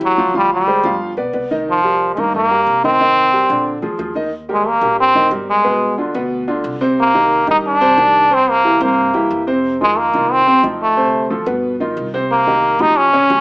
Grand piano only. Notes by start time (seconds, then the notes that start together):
Already playing: E3 E4 G4
0.18 F3 F4 F5
0.34 F3 F4 F5
0.67 G#3 G#4 C5
0.84 F3 F4 F5
1.17 B3 B4 D5
1.34 B3 B4 D5
1.51 D#3 D#4 D#5
1.84 G3 G4 A#4
2.18 D#3 D#4 D#5
2.34 D#3 D#4 D#5
2.51 G3 G4 A#4
2.84 D#3 D#4 D#5
3.00 D#3 D#4 D#5
3.33 G3 G4 A#4
3.49 D3 D4 D5
3.82 F3 F4 G#4
3.99 F3 F4 G#4
4.15 D#3 D#4 D#5
4.49 G3 G4 A#4
4.82 G3 G4 A#4
5.15 D#3 D#4 D#5
5.31 G3 G4 A#4
5.64 B2 B3 B4
5.98 D3 D4 F4
6.15 B2 B3 B4
6.48 D3 D4 F4
6.81 C3 C4 C5
7.14 D#3 D#4 G4
7.47 D#3 D#4 G4
7.81 C3 C4 C5
7.97 D#3 D4 G4
8.30 C3 C4 C5
8.64 E3 E4 G4
8.81 C3 C4 C5
9.14 E3 E4 G4
9.47 C3 C4 C5
9.81 D#3 D#4 F4
10.14 D#3 D#4 F4
10.47 C3 C4 C5
10.63 F3 D#4 F4
10.96 C3 C4 C5
11.30 F3 F4 A4
11.46 B2 B3 B4
11.80 D#3 D#4 F4
12.14 C3 C4 C5
12.47 D#3 D#4 G4
12.80 F3 F4 G4
13.13 C#3 C#4 C#5
13.30 F3 F4 G4